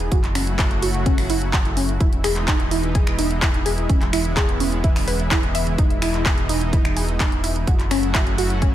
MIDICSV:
0, 0, Header, 1, 5, 480
1, 0, Start_track
1, 0, Key_signature, 4, "major"
1, 0, Tempo, 472441
1, 118, Time_signature, 4, 2, 24, 8
1, 8887, End_track
2, 0, Start_track
2, 0, Title_t, "Synth pluck"
2, 0, Program_c, 0, 84
2, 118, Note_on_c, 0, 66, 82
2, 188, Note_off_c, 0, 66, 0
2, 358, Note_on_c, 0, 61, 75
2, 428, Note_off_c, 0, 61, 0
2, 598, Note_on_c, 0, 64, 81
2, 669, Note_off_c, 0, 64, 0
2, 838, Note_on_c, 0, 66, 73
2, 909, Note_off_c, 0, 66, 0
2, 1078, Note_on_c, 0, 61, 82
2, 1149, Note_off_c, 0, 61, 0
2, 1318, Note_on_c, 0, 64, 75
2, 1389, Note_off_c, 0, 64, 0
2, 1558, Note_on_c, 0, 66, 81
2, 1628, Note_off_c, 0, 66, 0
2, 1797, Note_on_c, 0, 61, 76
2, 1868, Note_off_c, 0, 61, 0
2, 2037, Note_on_c, 0, 64, 82
2, 2108, Note_off_c, 0, 64, 0
2, 2277, Note_on_c, 0, 68, 74
2, 2348, Note_off_c, 0, 68, 0
2, 2516, Note_on_c, 0, 63, 82
2, 2588, Note_off_c, 0, 63, 0
2, 2757, Note_on_c, 0, 64, 72
2, 2828, Note_off_c, 0, 64, 0
2, 2997, Note_on_c, 0, 68, 86
2, 3068, Note_off_c, 0, 68, 0
2, 3237, Note_on_c, 0, 63, 77
2, 3308, Note_off_c, 0, 63, 0
2, 3477, Note_on_c, 0, 64, 83
2, 3548, Note_off_c, 0, 64, 0
2, 3716, Note_on_c, 0, 68, 74
2, 3787, Note_off_c, 0, 68, 0
2, 3956, Note_on_c, 0, 61, 80
2, 4028, Note_off_c, 0, 61, 0
2, 4196, Note_on_c, 0, 64, 76
2, 4268, Note_off_c, 0, 64, 0
2, 4436, Note_on_c, 0, 68, 84
2, 4508, Note_off_c, 0, 68, 0
2, 4677, Note_on_c, 0, 61, 72
2, 4748, Note_off_c, 0, 61, 0
2, 4917, Note_on_c, 0, 64, 82
2, 4988, Note_off_c, 0, 64, 0
2, 5157, Note_on_c, 0, 71, 79
2, 5228, Note_off_c, 0, 71, 0
2, 5397, Note_on_c, 0, 64, 79
2, 5468, Note_off_c, 0, 64, 0
2, 5637, Note_on_c, 0, 76, 77
2, 5680, Note_off_c, 0, 76, 0
2, 5876, Note_on_c, 0, 63, 78
2, 5948, Note_off_c, 0, 63, 0
2, 6117, Note_on_c, 0, 64, 77
2, 6188, Note_off_c, 0, 64, 0
2, 6357, Note_on_c, 0, 68, 82
2, 6428, Note_off_c, 0, 68, 0
2, 6597, Note_on_c, 0, 63, 74
2, 6668, Note_off_c, 0, 63, 0
2, 6837, Note_on_c, 0, 64, 81
2, 6908, Note_off_c, 0, 64, 0
2, 7077, Note_on_c, 0, 68, 76
2, 7148, Note_off_c, 0, 68, 0
2, 7316, Note_on_c, 0, 63, 81
2, 7388, Note_off_c, 0, 63, 0
2, 7556, Note_on_c, 0, 64, 76
2, 7628, Note_off_c, 0, 64, 0
2, 7797, Note_on_c, 0, 66, 84
2, 7868, Note_off_c, 0, 66, 0
2, 8037, Note_on_c, 0, 61, 73
2, 8108, Note_off_c, 0, 61, 0
2, 8277, Note_on_c, 0, 64, 82
2, 8348, Note_off_c, 0, 64, 0
2, 8518, Note_on_c, 0, 66, 71
2, 8588, Note_off_c, 0, 66, 0
2, 8757, Note_on_c, 0, 61, 84
2, 8828, Note_off_c, 0, 61, 0
2, 8887, End_track
3, 0, Start_track
3, 0, Title_t, "Analog synth pad"
3, 0, Program_c, 1, 89
3, 117, Note_on_c, 1, 49, 81
3, 117, Note_on_c, 1, 54, 73
3, 117, Note_on_c, 1, 64, 70
3, 118, Note_on_c, 1, 57, 70
3, 118, Note_on_c, 1, 66, 88
3, 2018, Note_off_c, 1, 49, 0
3, 2018, Note_off_c, 1, 54, 0
3, 2018, Note_off_c, 1, 57, 0
3, 2018, Note_off_c, 1, 66, 0
3, 2037, Note_on_c, 1, 47, 80
3, 2037, Note_on_c, 1, 52, 71
3, 2037, Note_on_c, 1, 56, 73
3, 2037, Note_on_c, 1, 63, 75
3, 3938, Note_off_c, 1, 47, 0
3, 3938, Note_off_c, 1, 52, 0
3, 3938, Note_off_c, 1, 63, 0
3, 3957, Note_on_c, 1, 59, 71
3, 3958, Note_on_c, 1, 49, 78
3, 3958, Note_on_c, 1, 52, 71
3, 5858, Note_off_c, 1, 59, 0
3, 5859, Note_off_c, 1, 49, 0
3, 5877, Note_on_c, 1, 63, 74
3, 5878, Note_on_c, 1, 47, 80
3, 7757, Note_off_c, 1, 56, 0
3, 7757, Note_off_c, 1, 64, 0
3, 7759, Note_off_c, 1, 52, 0
3, 7778, Note_off_c, 1, 47, 0
3, 7778, Note_off_c, 1, 63, 0
3, 7797, Note_on_c, 1, 64, 71
3, 7798, Note_on_c, 1, 49, 80
3, 7798, Note_on_c, 1, 54, 73
3, 7798, Note_on_c, 1, 57, 73
3, 7798, Note_on_c, 1, 66, 85
3, 8887, Note_off_c, 1, 49, 0
3, 8887, Note_off_c, 1, 54, 0
3, 8887, Note_off_c, 1, 57, 0
3, 8887, Note_off_c, 1, 64, 0
3, 8887, Note_off_c, 1, 66, 0
3, 8887, End_track
4, 0, Start_track
4, 0, Title_t, "Analog synth bass"
4, 0, Program_c, 2, 38
4, 118, Note_on_c, 2, 30, 86
4, 2014, Note_off_c, 2, 30, 0
4, 2037, Note_on_c, 2, 28, 86
4, 3934, Note_off_c, 2, 28, 0
4, 3957, Note_on_c, 2, 28, 84
4, 5854, Note_off_c, 2, 28, 0
4, 5877, Note_on_c, 2, 28, 86
4, 7774, Note_off_c, 2, 28, 0
4, 7797, Note_on_c, 2, 30, 86
4, 8887, Note_off_c, 2, 30, 0
4, 8887, End_track
5, 0, Start_track
5, 0, Title_t, "Drums"
5, 1, Note_on_c, 9, 42, 40
5, 103, Note_off_c, 9, 42, 0
5, 118, Note_on_c, 9, 36, 120
5, 118, Note_on_c, 9, 42, 64
5, 219, Note_off_c, 9, 36, 0
5, 220, Note_off_c, 9, 42, 0
5, 241, Note_on_c, 9, 42, 37
5, 242, Note_on_c, 9, 39, 37
5, 342, Note_off_c, 9, 42, 0
5, 344, Note_off_c, 9, 39, 0
5, 358, Note_on_c, 9, 26, 64
5, 358, Note_on_c, 9, 46, 106
5, 460, Note_off_c, 9, 26, 0
5, 460, Note_off_c, 9, 46, 0
5, 480, Note_on_c, 9, 42, 38
5, 582, Note_off_c, 9, 42, 0
5, 597, Note_on_c, 9, 42, 65
5, 598, Note_on_c, 9, 36, 124
5, 599, Note_on_c, 9, 39, 119
5, 699, Note_off_c, 9, 36, 0
5, 699, Note_off_c, 9, 42, 0
5, 700, Note_off_c, 9, 39, 0
5, 720, Note_on_c, 9, 42, 39
5, 822, Note_off_c, 9, 42, 0
5, 838, Note_on_c, 9, 46, 103
5, 939, Note_off_c, 9, 46, 0
5, 960, Note_on_c, 9, 42, 38
5, 1062, Note_off_c, 9, 42, 0
5, 1077, Note_on_c, 9, 36, 120
5, 1077, Note_on_c, 9, 42, 67
5, 1179, Note_off_c, 9, 36, 0
5, 1179, Note_off_c, 9, 42, 0
5, 1199, Note_on_c, 9, 26, 58
5, 1199, Note_on_c, 9, 46, 65
5, 1301, Note_off_c, 9, 26, 0
5, 1301, Note_off_c, 9, 46, 0
5, 1317, Note_on_c, 9, 46, 101
5, 1419, Note_off_c, 9, 46, 0
5, 1439, Note_on_c, 9, 42, 38
5, 1541, Note_off_c, 9, 42, 0
5, 1557, Note_on_c, 9, 36, 113
5, 1557, Note_on_c, 9, 42, 68
5, 1558, Note_on_c, 9, 39, 124
5, 1659, Note_off_c, 9, 36, 0
5, 1659, Note_off_c, 9, 42, 0
5, 1660, Note_off_c, 9, 39, 0
5, 1680, Note_on_c, 9, 42, 38
5, 1781, Note_off_c, 9, 42, 0
5, 1797, Note_on_c, 9, 46, 107
5, 1898, Note_off_c, 9, 46, 0
5, 1920, Note_on_c, 9, 42, 38
5, 2021, Note_off_c, 9, 42, 0
5, 2037, Note_on_c, 9, 36, 124
5, 2037, Note_on_c, 9, 42, 62
5, 2139, Note_off_c, 9, 36, 0
5, 2139, Note_off_c, 9, 42, 0
5, 2160, Note_on_c, 9, 42, 38
5, 2262, Note_off_c, 9, 42, 0
5, 2278, Note_on_c, 9, 26, 66
5, 2278, Note_on_c, 9, 46, 108
5, 2379, Note_off_c, 9, 26, 0
5, 2379, Note_off_c, 9, 46, 0
5, 2400, Note_on_c, 9, 42, 37
5, 2401, Note_on_c, 9, 39, 37
5, 2501, Note_off_c, 9, 42, 0
5, 2503, Note_off_c, 9, 39, 0
5, 2517, Note_on_c, 9, 36, 121
5, 2517, Note_on_c, 9, 42, 62
5, 2519, Note_on_c, 9, 39, 120
5, 2619, Note_off_c, 9, 36, 0
5, 2619, Note_off_c, 9, 42, 0
5, 2620, Note_off_c, 9, 39, 0
5, 2639, Note_on_c, 9, 42, 38
5, 2741, Note_off_c, 9, 42, 0
5, 2757, Note_on_c, 9, 46, 106
5, 2859, Note_off_c, 9, 46, 0
5, 2880, Note_on_c, 9, 42, 37
5, 2981, Note_off_c, 9, 42, 0
5, 2997, Note_on_c, 9, 36, 115
5, 2997, Note_on_c, 9, 42, 63
5, 3098, Note_off_c, 9, 36, 0
5, 3099, Note_off_c, 9, 42, 0
5, 3119, Note_on_c, 9, 26, 63
5, 3119, Note_on_c, 9, 42, 37
5, 3221, Note_off_c, 9, 26, 0
5, 3221, Note_off_c, 9, 42, 0
5, 3237, Note_on_c, 9, 46, 107
5, 3338, Note_off_c, 9, 46, 0
5, 3359, Note_on_c, 9, 42, 37
5, 3461, Note_off_c, 9, 42, 0
5, 3477, Note_on_c, 9, 36, 117
5, 3477, Note_on_c, 9, 42, 65
5, 3478, Note_on_c, 9, 39, 123
5, 3578, Note_off_c, 9, 42, 0
5, 3579, Note_off_c, 9, 36, 0
5, 3580, Note_off_c, 9, 39, 0
5, 3599, Note_on_c, 9, 42, 37
5, 3701, Note_off_c, 9, 42, 0
5, 3717, Note_on_c, 9, 46, 110
5, 3818, Note_off_c, 9, 46, 0
5, 3839, Note_on_c, 9, 42, 37
5, 3941, Note_off_c, 9, 42, 0
5, 3957, Note_on_c, 9, 36, 124
5, 3957, Note_on_c, 9, 42, 61
5, 4059, Note_off_c, 9, 36, 0
5, 4059, Note_off_c, 9, 42, 0
5, 4079, Note_on_c, 9, 42, 38
5, 4081, Note_on_c, 9, 39, 34
5, 4181, Note_off_c, 9, 42, 0
5, 4182, Note_off_c, 9, 39, 0
5, 4197, Note_on_c, 9, 26, 67
5, 4197, Note_on_c, 9, 46, 110
5, 4299, Note_off_c, 9, 26, 0
5, 4299, Note_off_c, 9, 46, 0
5, 4319, Note_on_c, 9, 42, 38
5, 4421, Note_off_c, 9, 42, 0
5, 4437, Note_on_c, 9, 36, 123
5, 4437, Note_on_c, 9, 42, 63
5, 4438, Note_on_c, 9, 39, 111
5, 4539, Note_off_c, 9, 36, 0
5, 4539, Note_off_c, 9, 42, 0
5, 4540, Note_off_c, 9, 39, 0
5, 4560, Note_on_c, 9, 42, 36
5, 4661, Note_off_c, 9, 42, 0
5, 4677, Note_on_c, 9, 46, 107
5, 4779, Note_off_c, 9, 46, 0
5, 4799, Note_on_c, 9, 42, 38
5, 4901, Note_off_c, 9, 42, 0
5, 4917, Note_on_c, 9, 36, 119
5, 4917, Note_on_c, 9, 42, 61
5, 5019, Note_off_c, 9, 36, 0
5, 5019, Note_off_c, 9, 42, 0
5, 5039, Note_on_c, 9, 26, 62
5, 5039, Note_on_c, 9, 46, 63
5, 5141, Note_off_c, 9, 26, 0
5, 5141, Note_off_c, 9, 46, 0
5, 5157, Note_on_c, 9, 46, 104
5, 5258, Note_off_c, 9, 46, 0
5, 5279, Note_on_c, 9, 42, 37
5, 5381, Note_off_c, 9, 42, 0
5, 5397, Note_on_c, 9, 36, 114
5, 5397, Note_on_c, 9, 42, 62
5, 5398, Note_on_c, 9, 39, 120
5, 5498, Note_off_c, 9, 42, 0
5, 5499, Note_off_c, 9, 36, 0
5, 5500, Note_off_c, 9, 39, 0
5, 5519, Note_on_c, 9, 42, 36
5, 5621, Note_off_c, 9, 42, 0
5, 5637, Note_on_c, 9, 46, 107
5, 5738, Note_off_c, 9, 46, 0
5, 5759, Note_on_c, 9, 42, 38
5, 5861, Note_off_c, 9, 42, 0
5, 5877, Note_on_c, 9, 36, 120
5, 5877, Note_on_c, 9, 42, 61
5, 5978, Note_off_c, 9, 42, 0
5, 5979, Note_off_c, 9, 36, 0
5, 5999, Note_on_c, 9, 42, 37
5, 6100, Note_off_c, 9, 42, 0
5, 6117, Note_on_c, 9, 26, 66
5, 6117, Note_on_c, 9, 46, 99
5, 6218, Note_off_c, 9, 26, 0
5, 6218, Note_off_c, 9, 46, 0
5, 6239, Note_on_c, 9, 42, 36
5, 6241, Note_on_c, 9, 39, 35
5, 6341, Note_off_c, 9, 42, 0
5, 6342, Note_off_c, 9, 39, 0
5, 6357, Note_on_c, 9, 36, 118
5, 6357, Note_on_c, 9, 42, 59
5, 6358, Note_on_c, 9, 39, 112
5, 6458, Note_off_c, 9, 36, 0
5, 6458, Note_off_c, 9, 42, 0
5, 6460, Note_off_c, 9, 39, 0
5, 6479, Note_on_c, 9, 42, 38
5, 6581, Note_off_c, 9, 42, 0
5, 6597, Note_on_c, 9, 46, 103
5, 6698, Note_off_c, 9, 46, 0
5, 6720, Note_on_c, 9, 42, 37
5, 6821, Note_off_c, 9, 42, 0
5, 6837, Note_on_c, 9, 36, 114
5, 6837, Note_on_c, 9, 42, 63
5, 6938, Note_off_c, 9, 36, 0
5, 6939, Note_off_c, 9, 42, 0
5, 6960, Note_on_c, 9, 26, 64
5, 6960, Note_on_c, 9, 42, 38
5, 7061, Note_off_c, 9, 26, 0
5, 7061, Note_off_c, 9, 42, 0
5, 7077, Note_on_c, 9, 46, 98
5, 7179, Note_off_c, 9, 46, 0
5, 7199, Note_on_c, 9, 42, 37
5, 7301, Note_off_c, 9, 42, 0
5, 7317, Note_on_c, 9, 36, 113
5, 7317, Note_on_c, 9, 42, 64
5, 7319, Note_on_c, 9, 39, 114
5, 7418, Note_off_c, 9, 36, 0
5, 7419, Note_off_c, 9, 42, 0
5, 7420, Note_off_c, 9, 39, 0
5, 7439, Note_on_c, 9, 42, 34
5, 7541, Note_off_c, 9, 42, 0
5, 7557, Note_on_c, 9, 46, 101
5, 7659, Note_off_c, 9, 46, 0
5, 7680, Note_on_c, 9, 42, 37
5, 7781, Note_off_c, 9, 42, 0
5, 7797, Note_on_c, 9, 36, 112
5, 7798, Note_on_c, 9, 42, 65
5, 7898, Note_off_c, 9, 36, 0
5, 7899, Note_off_c, 9, 42, 0
5, 7920, Note_on_c, 9, 42, 38
5, 7921, Note_on_c, 9, 39, 34
5, 8022, Note_off_c, 9, 42, 0
5, 8023, Note_off_c, 9, 39, 0
5, 8037, Note_on_c, 9, 26, 66
5, 8037, Note_on_c, 9, 46, 103
5, 8139, Note_off_c, 9, 26, 0
5, 8139, Note_off_c, 9, 46, 0
5, 8160, Note_on_c, 9, 42, 39
5, 8262, Note_off_c, 9, 42, 0
5, 8277, Note_on_c, 9, 36, 114
5, 8277, Note_on_c, 9, 42, 65
5, 8278, Note_on_c, 9, 39, 111
5, 8378, Note_off_c, 9, 42, 0
5, 8379, Note_off_c, 9, 36, 0
5, 8380, Note_off_c, 9, 39, 0
5, 8400, Note_on_c, 9, 42, 39
5, 8501, Note_off_c, 9, 42, 0
5, 8517, Note_on_c, 9, 46, 98
5, 8619, Note_off_c, 9, 46, 0
5, 8639, Note_on_c, 9, 42, 39
5, 8741, Note_off_c, 9, 42, 0
5, 8757, Note_on_c, 9, 36, 109
5, 8757, Note_on_c, 9, 42, 65
5, 8859, Note_off_c, 9, 36, 0
5, 8859, Note_off_c, 9, 42, 0
5, 8887, End_track
0, 0, End_of_file